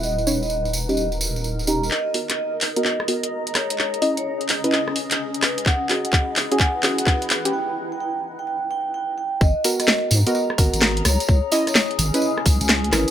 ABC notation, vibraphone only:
X:1
M:4/4
L:1/16
Q:"Swing 16ths" 1/4=128
K:G#m
V:1 name="Vibraphone"
d z2 d2 z2 d z6 a z | d z2 d2 z2 d z6 c z | c z2 c2 z2 d z6 B z | f z2 f2 z2 g f z2 f2 z2 =g |
=g z2 g g z2 g g z g z g z g z | d z2 d2 z2 d z6 c z | c z2 c2 z2 d z6 B z |]